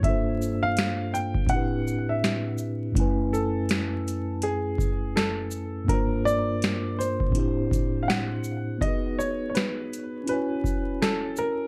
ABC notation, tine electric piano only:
X:1
M:4/4
L:1/8
Q:"Swing 16ths" 1/4=82
K:F#
V:1 name="Tine electric piano"
[=G,,_B,=D=F=A=c]4 [=A,,=CD=E=G=B]4 | [F,,=A,C=EBg]8 | [=G,,_B,=D=F_B^B]4 [=A,,=CD=E=G=c]4 | [B,DFGB]4 [C=EFcg]4 |]